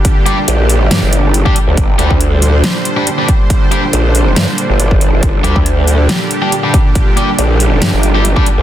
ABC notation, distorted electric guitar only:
X:1
M:4/4
L:1/16
Q:"Swing 16ths" 1/4=139
K:Gm
V:1 name="Distorted electric guitar"
z2 [G,DG] z8 z2 [G,DG] z2 | z2 [G,DG] z8 [G,DG] z [G,DG] z2 | z2 [G,DG] z12 z | z2 [G,DG] z8 [G,DG] z [G,DG] z2 |
z2 [G,DG] z8 [G,DG] z [G,DG] z2 |]